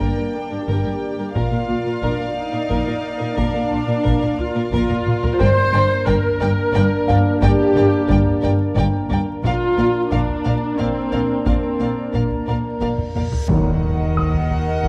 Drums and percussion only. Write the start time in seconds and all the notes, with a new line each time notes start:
0.01 taiko
0.68 taiko
1.35 taiko
2.02 taiko
2.70 taiko
3.38 taiko
4.05 taiko
4.22 taiko low
4.39 taiko low
4.73 taiko
4.90 taiko low-mid
5.07 taiko mid
5.23 taiko low
5.40 taiko
6.08 taiko
6.25 taiko low
6.42 taiko low
6.75 taiko
7.09 taiko low
7.42 taiko
8.09 taiko
8.26 taiko low
8.43 taiko low
8.77 taiko
9.10 taiko low
9.44 taiko
10.12 taiko
10.29 taiko low
10.45 taiko low
10.79 taiko
11.12 taiko low
11.46 taiko
12.13 taiko
12.31 taiko low
12.48 taiko low
12.81 taiko
12.98 taiko low-mid
13.15 taiko low-mid
13.32 taiko low
13.49 taiko
14.17 taiko
14.34 taiko low
14.50 taiko low
14.84 taiko